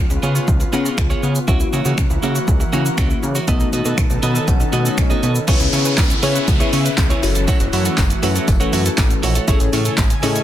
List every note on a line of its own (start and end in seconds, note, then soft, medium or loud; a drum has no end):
0.00 1.44 C#3 medium
0.00 0.17 B3 medium
0.00 1.46 B3 medium
0.00 0.17 C#4 medium
0.00 0.17 F4 medium
0.00 1.46 F4 medium
0.00 0.17 G#4 medium
0.10 0.19 C#2 loud
0.10 0.17 C#4 medium
0.10 muted clean electric guitar stroke soft
0.10 shaker medium
0.23 0.39 C#3 medium
0.23 0.35 B3 medium
0.23 0.30 B3 medium
0.23 0.35 F4 medium
0.23 0.34 G#4 medium
0.23 0.34 C#5 medium
0.23 shaker medium
0.35 0.47 B3 medium
0.35 0.42 F4 medium
0.35 0.47 F4 medium
0.35 0.47 G#4 medium
0.35 0.47 C#5 medium
0.35 shaker medium
0.48 0.64 C#2 loud
0.48 0.55 F3 medium
0.48 muted clean electric guitar stroke soft
0.48 kick loud
0.48 shaker medium
0.60 0.67 C#4 medium
0.60 muted clean electric guitar stroke soft
0.60 shaker medium
0.73 0.89 C#3 loud
0.73 0.85 B3 medium
0.73 1.25 B3 medium
0.73 0.80 B3 medium
0.73 1.25 C#4 medium
0.73 1.25 F4 medium
0.73 0.85 F4 medium
0.73 1.25 G#4 medium
0.73 0.84 G#4 medium
0.73 0.84 C#5 medium
0.73 shaker medium
0.85 0.97 B3 medium
0.85 0.92 F4 medium
0.85 0.97 F4 medium
0.85 0.97 G#4 medium
0.85 0.97 C#5 medium
0.85 shaker medium
0.98 1.14 C#2 loud
0.98 finger snap loud
0.98 kick loud
0.98 shaker medium
1.10 1.21 B3 medium
1.10 1.17 C#4 medium
1.10 1.22 F4 medium
1.10 1.22 G#4 medium
1.10 1.23 C#5 medium
1.10 shaker soft
1.23 1.39 C#3 loud
1.23 1.38 B3 medium
1.23 1.30 B3 medium
1.23 1.35 F4 medium
1.23 1.34 G#4 medium
1.23 1.34 C#5 medium
1.23 shaker medium
1.35 muted clean electric guitar stroke medium
1.35 shaker medium
1.48 1.64 C#2 loud
1.48 3.46 E3 medium
1.48 1.55 F#3 medium
1.48 1.68 A#3 medium
1.48 2.17 A#3 medium
1.48 3.46 A#3 medium
1.48 2.17 C#4 medium
1.48 2.17 E4 medium
1.48 1.60 E4 medium
1.48 3.46 F#4 medium
1.48 2.17 F#4 loud
1.48 1.59 F#4 medium
1.48 1.59 C#5 loud
1.48 kick loud
1.48 swell medium
1.48 shaker medium
1.60 1.67 E4 medium
1.60 muted clean electric guitar stroke soft
1.60 shaker medium
1.73 1.81 C#3 loud
1.73 1.85 A#3 medium
1.73 1.85 E4 medium
1.73 1.84 F#4 medium
1.73 1.84 C#5 medium
1.73 shaker medium
1.85 1.94 C#3 loud
1.85 1.96 A#3 soft
1.85 1.97 E4 medium
1.85 1.92 F#4 medium
1.85 1.97 F#4 medium
1.85 1.97 C#5 medium
1.85 shaker medium
1.98 2.06 C#2 loud
1.98 2.05 F#3 medium
1.98 finger snap loud
1.98 kick loud
1.98 shaker medium
2.10 2.19 C#2 loud
2.10 2.17 E4 medium
2.10 muted clean electric guitar stroke soft
2.10 shaker medium
2.23 2.39 C#3 loud
2.23 2.43 A#3 medium
2.23 2.30 A#3 medium
2.23 2.35 E4 loud
2.23 2.34 F#4 medium
2.23 2.34 C#5 loud
2.23 shaker medium
2.35 2.42 F#4 medium
2.35 muted clean electric guitar stroke medium
2.35 shaker medium
2.48 2.64 C#2 loud
2.48 2.55 F#3 medium
2.48 muted clean electric guitar stroke soft
2.48 kick loud
2.48 shaker medium
2.60 2.67 E4 medium
2.60 muted clean electric guitar stroke medium
2.60 shaker medium
2.73 2.89 C#3 medium
2.73 2.93 A#3 medium
2.73 3.25 A#3 medium
2.73 2.80 A#3 medium
2.73 3.25 C#4 medium
2.73 3.25 E4 medium
2.73 2.85 E4 medium
2.73 3.25 F#4 medium
2.73 2.84 F#4 loud
2.73 2.84 C#5 loud
2.73 shaker medium
2.85 2.92 F#4 medium
2.85 muted clean electric guitar stroke soft
2.85 shaker medium
2.98 3.14 C#2 loud
2.98 3.18 A#3 medium
2.98 3.10 E4 medium
2.98 3.09 F#4 medium
2.98 3.09 C#5 medium
2.98 finger snap loud
2.98 kick loud
2.98 shaker medium
3.10 3.17 E4 medium
3.10 muted clean electric guitar stroke soft
3.10 shaker medium
3.23 3.39 C#3 loud
3.23 3.30 A#3 medium
3.23 muted clean electric guitar stroke soft
3.23 shaker medium
3.35 3.47 A#3 medium
3.35 3.48 E4 medium
3.35 3.47 F#4 medium
3.35 3.48 C#5 medium
3.35 shaker medium
3.47 3.64 B1 loud
3.47 5.46 D#3 medium
3.47 4.17 A3 medium
3.47 3.55 A3 medium
3.47 3.68 B3 medium
3.47 4.17 B3 medium
3.47 5.46 B3 medium
3.47 4.17 D#4 medium
3.47 3.68 F#4 medium
3.47 4.17 F#4 loud
3.47 5.46 A4 medium
3.47 3.68 A4 medium
3.47 3.68 D#5 medium
3.47 kick loud
3.47 closed hi-hat medium
3.47 shaker medium
3.60 3.67 D#4 medium
3.60 shaker medium
3.72 3.81 B2 loud
3.72 3.85 B3 medium
3.72 3.85 F#4 medium
3.72 3.84 A4 medium
3.72 3.84 D#5 medium
3.72 closed hi-hat soft
3.72 shaker medium
3.85 3.93 B2 loud
3.85 3.96 B3 medium
3.85 3.97 F#4 medium
3.85 3.92 A4 medium
3.85 3.97 A4 medium
3.85 3.97 D#5 medium
3.85 shaker medium
3.98 4.06 B1 loud
3.98 4.05 A3 medium
3.98 finger snap loud
3.98 kick loud
3.98 closed hi-hat medium
3.98 shaker medium
4.10 4.18 B1 loud
4.10 4.17 D#4 medium
4.10 muted clean electric guitar stroke soft
4.10 shaker medium
4.22 4.39 B2 loud
4.22 4.35 B3 medium
4.22 4.30 B3 medium
4.22 4.35 F#4 medium
4.22 4.34 A4 loud
4.22 4.34 D#5 loud
4.22 4.46 B5 medium
4.22 closed hi-hat medium
4.22 shaker medium
4.35 4.46 B3 medium
4.35 4.47 F#4 medium
4.35 4.42 A4 medium
4.35 4.47 A4 medium
4.35 4.47 D#5 medium
4.35 shaker medium
4.48 4.64 B1 loud
4.48 4.55 A3 medium
4.48 4.94 F#5 medium
4.48 muted clean electric guitar stroke soft
4.48 kick loud
4.48 closed hi-hat medium
4.48 shaker medium
4.60 4.67 D#4 medium
4.60 muted clean electric guitar stroke medium
4.60 shaker medium
4.73 4.89 B2 loud
4.73 5.25 A3 medium
4.73 4.85 B3 medium
4.73 5.25 B3 medium
4.73 4.80 B3 medium
4.73 5.25 D#4 medium
4.73 4.85 F#4 medium
4.73 5.25 F#4 medium
4.73 4.84 A4 medium
4.73 4.84 D#5 medium
4.73 closed hi-hat medium
4.73 shaker medium
4.85 4.96 B3 soft
4.85 4.97 F#4 medium
4.85 4.92 A4 medium
4.85 4.97 A4 medium
4.85 4.97 D#5 medium
4.85 shaker medium
4.98 5.14 B1 loud
4.98 5.44 D#5 medium
4.98 finger snap loud
4.98 muted clean electric guitar stroke soft
4.98 kick loud
4.98 closed hi-hat medium
4.98 shaker medium
5.10 5.21 B3 medium
5.10 5.17 D#4 medium
5.10 5.22 F#4 medium
5.10 5.22 A4 medium
5.10 5.22 D#5 medium
5.10 shaker medium
5.22 5.39 B2 loud
5.22 5.38 B3 medium
5.22 5.30 B3 medium
5.22 5.35 F#4 medium
5.22 5.34 A4 medium
5.22 5.34 D#5 medium
5.22 closed hi-hat medium
5.22 shaker medium
5.35 muted clean electric guitar stroke soft
5.35 shaker medium
5.47 5.56 C#2 loud
5.47 7.21 C#3 medium
5.47 5.68 B3 loud
5.47 7.21 B3 medium
5.47 5.55 B3 medium
5.47 6.00 C#4 medium
5.47 6.00 E4 medium
5.47 7.21 E4 loud
5.47 5.60 E4 medium
5.47 6.00 G#4 medium
5.47 5.59 G#4 medium
5.47 6.00 B4 medium
5.47 6.00 C#5 loud
5.47 5.59 C#5 loud
5.47 kick loud
5.47 closed hi-hat medium
5.47 crash loud
5.47 tambourine soft
5.47 downlifter medium
5.47 shaker medium
5.60 5.68 C#2 loud
5.60 5.67 E4 medium
5.60 muted clean electric guitar stroke medium
5.60 closed hi-hat medium
5.60 shaker medium
5.72 5.99 C#3 loud
5.72 5.85 B3 medium
5.72 5.80 C#4 medium
5.72 5.85 E4 medium
5.72 5.84 G#4 medium
5.72 5.84 C#5 medium
5.72 open hi-hat medium
5.72 tambourine medium
5.72 shaker medium
5.85 5.96 B3 medium
5.85 5.97 E4 medium
5.85 5.97 G#4 medium
5.85 5.92 B4 medium
5.85 5.97 C#5 medium
5.85 closed hi-hat medium
5.85 shaker medium
5.97 6.14 C#2 loud
5.97 6.05 B3 medium
5.97 kick loud
5.97 snare medium
5.97 clap loud
5.97 closed hi-hat medium
5.97 tambourine medium
5.97 shaker medium
6.10 muted clean electric guitar stroke soft
6.10 closed hi-hat medium
6.10 shaker medium
6.22 6.39 C#3 loud
6.22 6.35 B3 medium
6.22 6.49 C#4 medium
6.22 6.30 C#4 medium
6.22 6.49 E4 medium
6.22 6.35 E4 medium
6.22 6.49 G#4 medium
6.22 6.34 G#4 medium
6.22 6.49 B4 medium
6.22 6.49 C#5 loud
6.22 6.34 C#5 loud
6.22 open hi-hat medium
6.22 tambourine soft
6.22 shaker medium
6.35 6.46 B3 medium
6.35 6.47 E4 medium
6.35 6.47 G#4 medium
6.35 6.42 B4 medium
6.35 6.47 C#5 medium
6.35 closed hi-hat soft
6.35 shaker medium
6.48 6.64 C#2 loud
6.48 6.55 B3 medium
6.48 muted clean electric guitar stroke medium
6.48 kick loud
6.48 closed hi-hat medium
6.48 tambourine soft
6.48 shaker medium
6.60 6.71 B3 medium
6.60 7.21 C#4 medium
6.60 7.21 E4 medium
6.60 6.67 E4 medium
6.60 6.72 E4 medium
6.60 7.21 G#4 medium
6.60 6.72 G#4 medium
6.60 7.21 B4 medium
6.60 6.73 C#5 medium
6.60 7.21 E5 medium
6.60 closed hi-hat soft
6.60 shaker medium
6.73 6.89 C#3 loud
6.73 6.88 B3 medium
6.73 6.80 C#4 medium
6.73 6.85 E4 medium
6.73 6.84 G#4 medium
6.73 6.84 C#5 medium
6.73 open hi-hat medium
6.73 tambourine medium
6.73 shaker medium
6.85 6.92 B4 medium
6.85 muted clean electric guitar stroke soft
6.85 closed hi-hat medium
6.85 tambourine soft
6.85 shaker medium
6.98 7.14 C#2 loud
6.98 7.05 B3 medium
6.98 muted clean electric guitar stroke soft
6.98 kick loud
6.98 snare loud
6.98 clap loud
6.98 closed hi-hat medium
6.98 tambourine medium
6.98 shaker medium
7.10 7.22 B3 medium
7.10 7.22 E4 medium
7.10 7.23 G#4 medium
7.10 7.22 C#5 medium
7.10 closed hi-hat medium
7.10 shaker medium
7.23 7.47 F#1 loud
7.23 9.46 E3 medium
7.23 10.43 A3 medium
7.23 8.03 C#4 medium
7.23 8.03 E4 medium
7.23 8.03 F#4 medium
7.23 9.46 F#4 medium
7.23 8.03 A4 medium
7.23 8.03 C#5 medium
7.23 muted clean electric guitar stroke soft
7.23 open hi-hat medium
7.23 tambourine soft
7.23 shaker medium
7.35 7.42 A4 medium
7.35 muted clean electric guitar stroke soft
7.35 closed hi-hat medium
7.35 shaker medium
7.48 7.68 A3 medium
7.48 7.55 A3 medium
7.48 7.60 E4 medium
7.48 7.59 F#4 loud
7.48 7.59 C#5 medium
7.48 kick loud
7.48 closed hi-hat medium
7.48 tambourine soft
7.48 shaker medium
7.60 7.69 F#1 loud
7.60 7.67 F#4 medium
7.60 muted clean electric guitar stroke soft
7.60 closed hi-hat medium
7.60 shaker medium
7.73 7.89 F#2 loud
7.73 7.85 A3 medium
7.73 7.80 E4 medium
7.73 7.85 E4 medium
7.73 7.84 F#4 medium
7.73 7.84 C#5 medium
7.73 open hi-hat medium
7.73 tambourine medium
7.73 shaker soft
7.85 7.96 A3 medium
7.85 7.97 E4 medium
7.85 7.97 F#4 medium
7.85 7.92 A4 medium
7.85 7.97 C#5 medium
7.85 closed hi-hat medium
7.85 shaker medium
7.98 8.14 F#1 loud
7.98 8.05 A3 medium
7.98 kick loud
7.98 snare medium
7.98 clap loud
7.98 closed hi-hat medium
7.98 tambourine medium
7.98 shaker medium
8.10 muted clean electric guitar stroke soft
8.10 closed hi-hat medium
8.10 shaker medium
8.23 8.39 F#2 loud
8.23 8.35 A3 medium
8.23 8.49 C#4 medium
8.23 8.49 E4 medium
8.23 8.30 E4 medium
8.23 8.35 E4 medium
8.23 8.49 F#4 medium
8.23 8.34 F#4 medium
8.23 8.49 A4 medium
8.23 8.49 B4 medium
8.23 8.34 C#5 medium
8.23 open hi-hat medium
8.23 tambourine medium
8.23 shaker medium
8.35 8.46 A3 medium
8.35 8.47 E4 medium
8.35 8.47 F#4 medium
8.35 8.42 A4 medium
8.35 8.47 C#5 medium
8.35 closed hi-hat soft
8.35 shaker medium
8.48 8.64 F#1 loud
8.48 8.55 A3 medium
8.48 muted clean electric guitar stroke soft
8.48 kick loud
8.48 closed hi-hat medium
8.48 tambourine soft
8.48 shaker medium
8.60 8.71 A3 medium
8.60 9.21 C#4 medium
8.60 9.21 E4 medium
8.60 8.72 E4 medium
8.60 8.67 F#4 medium
8.60 9.21 F#4 medium
8.60 8.72 F#4 medium
8.60 9.21 A4 medium
8.60 9.21 B4 loud
8.60 8.72 C#5 medium
8.60 closed hi-hat soft
8.60 shaker medium
8.72 8.89 F#2 loud
8.72 8.93 A3 medium
8.72 8.80 E4 medium
8.72 8.85 E4 medium
8.72 8.84 F#4 medium
8.72 8.84 C#5 medium
8.72 open hi-hat medium
8.72 tambourine medium
8.72 shaker medium
8.85 8.92 A4 medium
8.85 muted clean electric guitar stroke soft
8.85 closed hi-hat medium
8.85 shaker medium
8.98 9.14 A1 loud
8.98 muted clean electric guitar stroke medium
8.98 kick loud
8.98 snare loud
8.98 clap loud
8.98 closed hi-hat medium
8.98 tambourine medium
8.98 shaker medium
9.10 muted clean electric guitar stroke soft
9.10 closed hi-hat soft
9.10 shaker medium
9.23 9.39 A#1 medium
9.23 9.35 A3 medium
9.23 9.35 E4 medium
9.23 9.34 F#4 medium
9.23 9.34 C#5 medium
9.23 open hi-hat medium
9.23 tambourine soft
9.23 shaker medium
9.35 9.46 A3 medium
9.35 9.47 E4 medium
9.35 9.48 F#4 medium
9.35 9.42 A4 medium
9.35 9.48 C#5 medium
9.35 closed hi-hat medium
9.35 shaker medium
9.48 9.56 A1 loud
9.48 10.43 C#3 medium
9.48 9.68 A3 medium
9.48 9.55 A3 medium
9.48 10.00 C#4 medium
9.48 10.00 E4 medium
9.48 9.60 E4 loud
9.48 10.00 G#4 medium
9.48 9.59 G#4 loud
9.48 10.00 A4 medium
9.48 10.00 C#5 loud
9.48 9.59 C#5 loud
9.48 10.43 G#5 loud
9.48 kick loud
9.48 closed hi-hat medium
9.48 tambourine soft
9.48 shaker medium
9.60 9.69 A1 loud
9.60 9.67 G#4 medium
9.60 muted clean electric guitar stroke soft
9.60 closed hi-hat medium
9.60 tambourine soft
9.60 shaker medium
9.73 9.89 A2 loud
9.73 9.85 A3 medium
9.73 9.80 C#4 medium
9.73 9.85 E4 medium
9.73 9.84 G#4 medium
9.73 9.84 C#5 medium
9.73 open hi-hat medium
9.73 tambourine medium
9.73 shaker medium
9.85 9.96 A3 medium
9.85 9.97 E4 medium
9.85 9.97 G#4 medium
9.85 9.92 A4 medium
9.85 9.97 C#5 medium
9.85 closed hi-hat medium
9.85 tambourine soft
9.85 shaker medium
9.98 10.14 A1 loud
9.98 10.05 A3 medium
9.98 muted clean electric guitar stroke medium
9.98 kick loud
9.98 snare medium
9.98 clap loud
9.98 closed hi-hat medium
9.98 tambourine loud
9.98 shaker medium
10.10 muted clean electric guitar stroke medium
10.10 closed hi-hat medium
10.10 shaker medium
10.23 10.39 A2 loud
10.23 10.35 A3 medium
10.23 10.43 C#4 medium
10.23 10.30 C#4 medium
10.23 10.43 E4 medium
10.23 10.35 E4 loud
10.23 10.43 G#4 medium
10.23 10.34 G#4 medium
10.23 10.43 A4 medium
10.23 10.34 C#5 loud
10.23 10.43 D#5 loud
10.23 open hi-hat medium
10.23 tambourine soft
10.23 shaker medium
10.35 10.43 A3 medium
10.35 10.43 E4 medium
10.35 10.43 G#4 medium
10.35 10.42 A4 medium
10.35 10.43 C#5 medium
10.35 closed hi-hat medium
10.35 shaker medium